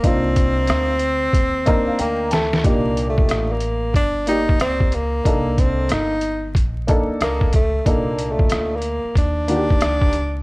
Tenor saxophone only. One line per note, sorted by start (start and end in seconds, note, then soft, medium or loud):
0.06 2.00 C4 loud
2.01 2.30 A#3 medium
2.34 2.68 A3 medium
2.67 3.09 A#3 medium
3.09 3.53 A3 medium
3.52 3.95 A#3 medium
3.96 4.26 D4 loud
4.28 4.58 D#4 loud
4.61 4.96 C4 loud
4.94 5.61 A#3 medium
5.59 5.94 C4 medium
5.93 6.57 D#4 medium
7.23 7.52 A#3 medium
7.55 7.89 A3 medium
7.88 8.33 A#3 medium
8.32 8.78 A3 medium
8.76 9.17 A#3 medium
9.18 10.43 D4 loud